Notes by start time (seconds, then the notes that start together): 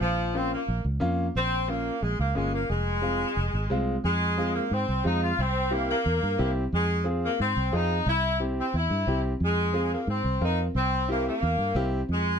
0.01 A#1 F3
0.34 A#3 C4 C#4 F4
0.53 A#3
0.68 A#1
0.84 C#2
1.00 F2 A#3 C#4 F4
1.35 A#1 C4
1.68 A#3 C#4 F4
2.02 A#1 G#3
2.19 C#2 A#3
2.35 G1 G#3 A#3 C#4 F4
2.53 A#3
2.69 F1 G#3
3.02 G#3 C4 F4
3.36 F1
3.53 G#1
3.70 C2 G#3 C4 F4
4.04 F2 G#3
4.37 G#3 C4 F4
4.54 A#3
4.71 G#2 C4
4.88 C2
5.04 F2 G#3 C4 D#4 F4
5.23 F4
5.38 C2 C4
5.70 A#3 C4 E4 G4
5.90 A#3
6.05 E2
6.23 G2
6.39 C2 C4 E4 G4
6.72 F2 G#3
7.04 C4 F4 G#4
7.24 A#3
7.40 G#2 C4
7.56 C2
7.72 F2 C4 D#4 F4 G#4
8.06 C2 E4
8.40 C4 E4 G4
8.59 C4
8.74 E2 E4
8.90 G2
9.07 C2 C4 E4 G4
9.40 F2 G#3
9.73 C4 F4 G#4
9.93 A#3
10.07 G#2 C4
10.24 C2
10.41 F2 C4 D#4 F4 A#4
10.75 C2 C4
11.08 A#3 C4 E4 G4
11.28 A#3
11.42 E2
11.58 G2
11.75 C2 C4 E4 G4
12.09 F2 G#3